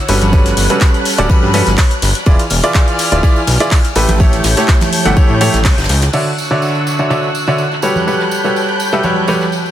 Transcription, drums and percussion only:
0.08 open hi-hat loud
0.08 ride medium
0.08 tambourine medium
0.22 closed hi-hat medium
0.22 tambourine soft
0.22 high conga medium
0.33 kick loud
0.33 ride medium
0.33 tambourine soft
0.46 snare soft
0.46 closed hi-hat medium
0.46 tambourine soft
0.57 open hi-hat loud
0.57 ride medium
0.57 tambourine medium
0.70 closed hi-hat medium
0.70 tambourine soft
0.81 kick loud
0.81 snare loud
0.81 clap loud
0.81 ride medium
0.81 tambourine medium
0.94 closed hi-hat soft
0.94 tambourine soft
1.05 open hi-hat loud
1.05 ride medium
1.05 tambourine medium
1.18 closed hi-hat medium
1.29 kick loud
1.29 ride medium
1.29 tambourine medium
1.29 high conga medium
1.42 tambourine soft
1.53 open hi-hat loud
1.53 ride medium
1.53 tambourine medium
1.53 high conga medium
1.66 snare soft
1.66 closed hi-hat medium
1.66 tambourine soft
1.78 kick medium
1.78 snare loud
1.78 clap loud
1.78 open hi-hat medium
1.78 ride medium
1.78 tambourine medium
1.91 closed hi-hat medium
1.91 tambourine soft
2.02 snare soft
2.02 open hi-hat loud
2.02 ride medium
2.02 tambourine medium
2.15 closed hi-hat medium
2.15 tambourine soft
2.26 kick loud
2.26 ride medium
2.26 tambourine soft
2.39 closed hi-hat medium
2.39 tambourine soft
2.50 open hi-hat medium
2.50 open hi-hat loud
2.50 tambourine medium
2.63 closed hi-hat medium
2.63 tambourine soft
2.74 kick loud
2.74 snare loud
2.74 clap loud
2.74 ride medium
2.74 tambourine soft
2.88 closed hi-hat soft
2.88 tambourine soft
2.99 snare soft
2.99 open hi-hat loud
2.99 ride medium
2.99 tambourine medium
3.11 closed hi-hat medium
3.11 tambourine soft
3.23 kick loud
3.23 ride medium
3.23 tambourine soft
3.36 ride soft
3.36 tambourine soft
3.47 open hi-hat loud
3.47 ride medium
3.47 tambourine medium
3.60 closed hi-hat medium
3.60 tambourine soft
3.71 kick loud
3.71 snare loud
3.71 clap loud
3.71 open hi-hat medium
3.71 ride medium
3.71 tambourine soft
3.84 snare soft
3.84 closed hi-hat medium
3.84 tambourine soft
3.95 open hi-hat medium
3.95 open hi-hat loud
3.95 tambourine medium
4.08 closed hi-hat medium
4.08 tambourine soft
4.08 high conga medium
4.20 kick loud
4.20 ride medium
4.20 tambourine soft
4.33 snare soft
4.33 closed hi-hat medium
4.33 tambourine soft
4.44 snare loud
4.44 open hi-hat loud
4.44 ride medium
4.44 tambourine medium
4.57 snare loud
4.57 closed hi-hat medium
4.57 ride medium
4.57 tambourine soft
4.68 kick loud
4.68 snare loud
4.68 clap loud
4.68 ride medium
4.68 tambourine medium
4.81 snare loud
4.81 closed hi-hat soft
4.81 ride medium
4.81 tambourine soft
4.81 high conga medium
4.93 open hi-hat loud
4.93 ride medium
4.93 tambourine medium
5.06 closed hi-hat medium
5.06 tambourine soft
5.16 kick loud
5.16 ride medium
5.16 tambourine soft
5.16 high conga loud
5.29 tambourine soft
5.41 open hi-hat loud
5.41 ride medium
5.41 tambourine medium
5.41 high conga medium
5.54 snare soft
5.54 closed hi-hat medium
5.54 tambourine soft
5.65 kick loud
5.65 snare loud
5.65 clap loud
5.65 open hi-hat medium
5.65 ride medium
5.65 tambourine soft
5.78 snare medium
5.78 closed hi-hat medium
5.78 ride medium
5.78 tambourine soft
5.84 snare medium
5.84 ride medium
5.89 snare loud
5.89 open hi-hat loud
5.89 ride medium
5.89 tambourine medium
6.01 snare loud
6.01 closed hi-hat medium
6.01 ride medium
6.01 tambourine soft
6.13 crash medium
6.13 ride medium
6.13 tambourine soft
6.26 tambourine soft
6.38 open hi-hat medium
6.38 tambourine medium
6.62 ride medium
6.62 tambourine medium
6.75 tambourine soft
6.86 snare soft
6.86 ride medium
6.86 tambourine medium
6.98 tambourine soft
7.10 ride medium
7.10 tambourine soft
7.22 ride soft
7.22 tambourine soft
7.35 ride medium
7.35 tambourine medium
7.47 tambourine soft
7.58 ride medium
7.58 tambourine soft
7.71 snare soft
7.71 tambourine soft
7.82 ride medium
7.82 tambourine medium
7.96 tambourine soft
7.96 high conga medium
8.08 ride medium
8.08 tambourine medium
8.20 snare soft
8.20 tambourine soft
8.31 ride medium
8.31 tambourine medium
8.44 tambourine soft
8.56 ride medium
8.56 tambourine soft
8.69 tambourine soft
8.80 ride medium
8.80 tambourine medium
8.92 tambourine soft
9.03 ride medium
9.03 tambourine soft
9.03 high conga medium
9.16 tambourine soft
9.28 ride medium
9.28 tambourine medium
9.28 high conga medium
9.41 snare soft
9.41 tambourine soft
9.52 ride medium
9.52 tambourine soft
9.66 tambourine soft

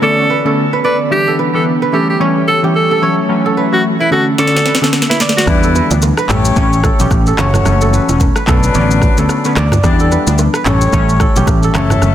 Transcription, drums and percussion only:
4.38 snare medium
4.47 snare medium
4.57 snare medium
4.66 snare medium
4.75 snare medium
4.84 snare medium
4.93 snare medium
5.02 snare medium
5.11 snare medium
5.20 snare medium
5.29 snare loud
5.38 snare medium
5.47 kick loud
5.47 cross-stick medium
5.47 low conga medium
5.47 shaker medium
5.63 shaker medium
5.75 low bongo medium
5.75 shaker medium
5.91 low bongo medium
5.91 shaker loud
6.02 high bongo medium
6.02 shaker medium
6.17 cross-stick loud
6.17 shaker medium
6.29 clap medium
6.29 mid tom medium
6.29 shaker medium
6.45 shaker medium
6.56 kick medium
6.56 low conga medium
6.56 shaker medium
6.73 shaker medium
6.84 kick loud
6.84 cross-stick loud
6.84 low bongo medium
6.84 shaker medium
7.00 high bongo medium
7.00 shaker loud
7.11 kick medium
7.11 cross-stick medium
7.11 high bongo medium
7.11 shaker medium
7.26 shaker soft
7.38 cross-stick medium
7.38 clap medium
7.38 high bongo medium
7.38 low conga medium
7.38 shaker medium
7.54 cross-stick medium
7.54 mid tom medium
7.54 low bongo medium
7.54 shaker medium
7.66 cross-stick medium
7.66 low conga medium
7.66 shaker medium
7.81 shaker medium
7.93 low bongo soft
7.93 shaker soft
8.09 low bongo medium
8.09 shaker loud
8.20 kick medium
8.20 high bongo medium
8.20 shaker medium
8.36 cross-stick loud
8.36 shaker medium
8.47 kick medium
8.47 clap medium
8.47 mid tom medium
8.47 shaker medium
8.63 shaker medium
8.75 low conga medium
8.75 shaker medium
8.91 shaker medium
9.02 kick loud
9.02 cross-stick medium
9.02 low bongo medium
9.02 shaker medium
9.18 high bongo medium
9.18 shaker loud
9.29 cross-stick medium
9.29 high bongo medium
9.29 shaker medium
9.45 shaker medium
9.56 cross-stick medium
9.56 clap medium
9.56 high bongo medium
9.56 low conga medium
9.56 shaker medium
9.72 cross-stick medium
9.72 mid tom medium
9.72 low bongo medium
9.72 shaker medium
9.84 kick loud
9.84 cross-stick medium
9.84 low conga medium
9.84 shaker medium
9.99 shaker medium
10.11 low bongo medium
10.11 shaker soft
10.27 low bongo medium
10.27 shaker loud
10.38 high bongo medium
10.38 shaker medium
10.54 cross-stick loud
10.54 shaker medium
10.65 clap loud
10.65 mid tom medium
10.65 shaker medium
10.81 shaker medium
10.93 kick medium
10.93 low conga medium
10.93 shaker medium
11.09 shaker medium
11.20 kick medium
11.20 cross-stick medium
11.20 low bongo medium
11.20 shaker medium
11.36 high bongo medium
11.36 shaker loud
11.47 kick medium
11.47 cross-stick medium
11.47 high bongo medium
11.47 shaker medium
11.63 shaker medium
11.74 cross-stick medium
11.74 clap medium
11.74 high bongo medium
11.74 low conga medium
11.74 shaker medium
11.90 cross-stick medium
11.90 mid tom medium
11.90 low bongo medium
11.90 shaker medium
12.02 cross-stick medium
12.02 low conga medium
12.02 shaker medium

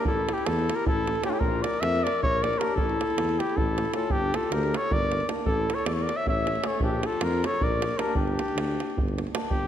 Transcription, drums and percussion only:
0.05 davul low loud
0.29 davul high medium
0.38 davul high soft
0.46 davul high medium
0.59 davul high soft
0.69 davul high medium
0.87 davul low loud
1.07 davul high medium
1.15 davul high soft
1.24 davul high medium
1.41 davul low medium
1.64 davul high medium
1.74 davul high soft
1.83 davul high medium
1.96 davul high soft
2.07 davul high medium
2.23 davul low medium
2.44 davul high medium
2.53 davul high soft
2.61 davul high medium
2.77 davul low medium
2.89 davul high soft
3.01 davul high medium
3.10 davul high soft
3.18 davul high medium
3.29 davul high soft
3.40 davul high medium
3.49 davul high soft
3.58 davul low loud
3.78 davul high medium
3.85 davul high soft
3.94 davul high medium
4.10 davul low medium
4.34 davul high medium
4.43 davul high soft
4.52 davul high medium
4.63 davul high soft
4.74 davul high medium
4.91 davul low loud
5.12 davul high medium
5.20 davul high soft
5.29 davul high medium
5.46 davul low medium
5.70 davul high medium
5.79 davul high soft
5.86 davul high medium
5.99 davul high soft
6.09 davul high medium
6.27 davul low medium
6.47 davul high medium
6.55 davul high soft
6.64 davul high medium
6.80 davul low medium
7.03 davul high medium
7.13 davul high soft
7.21 davul high medium
7.33 davul high soft
7.44 davul high medium
7.61 davul low medium
7.82 davul high medium
7.91 davul high soft
7.99 davul high medium
8.15 davul low loud
8.28 davul high soft
8.39 davul high medium
8.48 davul high soft
8.58 davul high medium
8.80 davul high medium
8.90 davul high soft
8.98 davul low loud
9.08 davul high soft
9.18 davul high medium
9.27 davul high soft
9.35 davul high medium
9.51 davul low medium

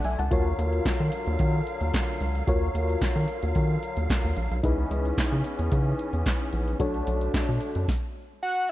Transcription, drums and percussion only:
0.04 open hi-hat medium
0.19 closed hi-hat medium
0.31 kick loud
0.31 closed hi-hat medium
0.59 closed hi-hat medium
0.73 closed hi-hat soft
0.85 kick loud
0.85 snare loud
0.85 clap medium
0.85 closed hi-hat loud
1.00 closed hi-hat soft
1.12 closed hi-hat medium
1.26 closed hi-hat soft
1.39 kick loud
1.39 closed hi-hat medium
1.67 closed hi-hat medium
1.81 closed hi-hat medium
1.94 kick loud
1.94 snare loud
1.94 clap medium
1.94 closed hi-hat loud
2.20 closed hi-hat medium
2.35 closed hi-hat medium
2.48 kick loud
2.48 closed hi-hat medium
2.75 closed hi-hat medium
2.89 closed hi-hat soft
3.01 kick loud
3.01 snare loud
3.01 clap medium
3.01 closed hi-hat loud
3.16 closed hi-hat soft
3.28 closed hi-hat medium
3.43 closed hi-hat medium
3.55 kick medium
3.55 closed hi-hat medium
3.83 closed hi-hat medium
3.97 closed hi-hat medium
4.10 kick loud
4.10 snare loud
4.10 clap medium
4.10 closed hi-hat medium
4.37 closed hi-hat medium
4.52 closed hi-hat medium
4.64 kick loud
4.64 closed hi-hat medium
4.91 closed hi-hat medium
5.05 closed hi-hat soft
5.18 kick loud
5.18 snare loud
5.18 clap medium
5.18 closed hi-hat loud
5.32 closed hi-hat soft
5.44 closed hi-hat medium
5.59 closed hi-hat medium
5.72 kick medium
5.72 closed hi-hat medium
5.99 closed hi-hat medium
6.13 closed hi-hat soft
6.26 kick loud
6.26 snare loud
6.26 clap medium
6.26 closed hi-hat loud
6.53 closed hi-hat medium
6.68 closed hi-hat medium
6.80 kick loud
6.80 closed hi-hat medium
6.94 closed hi-hat soft
7.07 closed hi-hat medium
7.21 closed hi-hat soft
7.34 kick loud
7.34 snare loud
7.34 clap medium
7.34 closed hi-hat loud
7.48 closed hi-hat soft
7.61 closed hi-hat medium
7.75 closed hi-hat medium
7.88 kick medium
7.88 snare medium

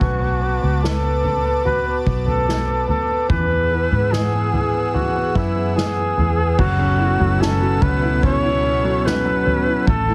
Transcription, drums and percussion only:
0.01 kick medium
0.01 floor tom medium
0.84 snare medium
1.24 floor tom medium
1.66 floor tom medium
2.07 kick medium
2.27 floor tom medium
2.49 snare medium
2.89 floor tom medium
3.30 kick medium
3.30 floor tom medium
3.91 floor tom medium
4.13 snare medium
4.53 floor tom medium
4.95 floor tom medium
5.35 kick medium
5.78 snare medium
6.18 floor tom medium
6.59 kick medium
6.59 floor tom loud
6.59 crash loud
7.20 floor tom medium
7.42 snare medium
7.82 kick loud
7.82 floor tom medium
8.23 kick loud
8.23 floor tom medium
9.07 snare medium
9.47 floor tom medium
9.87 kick loud
9.87 floor tom loud

